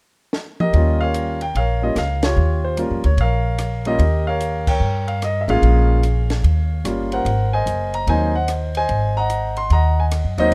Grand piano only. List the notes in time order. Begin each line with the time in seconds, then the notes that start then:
0.60 G4 A#4 D#5
0.74 G3 A#3 C#4 F4
1.01 A#4 C#5 F5
1.42 G5
1.57 A#4 C#5 F5
1.82 G3 A#3 C#4 F4 D#5
1.98 F5
2.24 F4 G4 C#5
2.65 C5
2.77 G3 A#3 C#4 F4 A#4
3.05 C#5
3.21 A#4 C#5 F5
3.86 G3 A#3 C#4 F4 G4 A#4 D#5
4.27 A#4 C#5 F5
4.68 A#4 C#5 G5
5.08 F5
5.24 D#5
5.41 E5
5.48 G#3 A#3 C#4 F4 G#4 C#5 F5
6.85 G3 A#3 C#4 F4
7.13 A#4 C5 F#5
7.53 C5 D#5 G#5
7.95 A#5
8.08 F#3 A#3 C4 D#4 C5 D#5 G#5
8.36 F#5
8.77 C5 D#5 G#5
9.17 D#5 F#5 A#5
9.58 C6
9.72 D#5 F#5 A#5
10.00 G#5
10.38 F#3 A#3 C4 D#4 F#4 C5 D#5